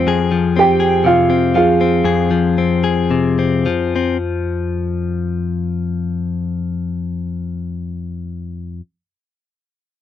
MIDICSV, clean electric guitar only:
0, 0, Header, 1, 2, 480
1, 0, Start_track
1, 0, Key_signature, -4, "minor"
1, 0, Tempo, 986842
1, 37, Time_signature, 4, 2, 24, 8
1, 998, Tempo, 1060071
1, 1478, Tempo, 1138520
1, 4388, End_track
2, 0, Start_track
2, 0, Title_t, "Clean electric guitar"
2, 0, Program_c, 0, 27
2, 0, Note_on_c, 0, 53, 60
2, 0, Note_on_c, 0, 60, 60
2, 33, Note_on_c, 0, 41, 75
2, 38, Note_on_c, 0, 68, 71
2, 147, Note_off_c, 0, 53, 0
2, 153, Note_on_c, 0, 53, 55
2, 273, Note_off_c, 0, 60, 0
2, 275, Note_on_c, 0, 60, 55
2, 383, Note_off_c, 0, 68, 0
2, 389, Note_on_c, 0, 68, 63
2, 507, Note_on_c, 0, 48, 63
2, 625, Note_off_c, 0, 60, 0
2, 631, Note_on_c, 0, 60, 52
2, 749, Note_off_c, 0, 53, 0
2, 750, Note_off_c, 0, 48, 0
2, 755, Note_on_c, 0, 53, 64
2, 874, Note_off_c, 0, 60, 0
2, 880, Note_on_c, 0, 60, 56
2, 989, Note_off_c, 0, 41, 0
2, 991, Note_off_c, 0, 68, 0
2, 994, Note_on_c, 0, 41, 68
2, 998, Note_on_c, 0, 68, 56
2, 1109, Note_off_c, 0, 53, 0
2, 1114, Note_on_c, 0, 53, 62
2, 1232, Note_off_c, 0, 60, 0
2, 1238, Note_on_c, 0, 60, 54
2, 1349, Note_off_c, 0, 68, 0
2, 1354, Note_on_c, 0, 68, 68
2, 1476, Note_on_c, 0, 48, 63
2, 1589, Note_off_c, 0, 60, 0
2, 1594, Note_on_c, 0, 60, 58
2, 1704, Note_off_c, 0, 53, 0
2, 1709, Note_on_c, 0, 53, 60
2, 1710, Note_off_c, 0, 48, 0
2, 1829, Note_off_c, 0, 60, 0
2, 1834, Note_on_c, 0, 60, 54
2, 1920, Note_off_c, 0, 68, 0
2, 1923, Note_off_c, 0, 60, 0
2, 3877, Note_off_c, 0, 41, 0
2, 3877, Note_off_c, 0, 53, 0
2, 4388, End_track
0, 0, End_of_file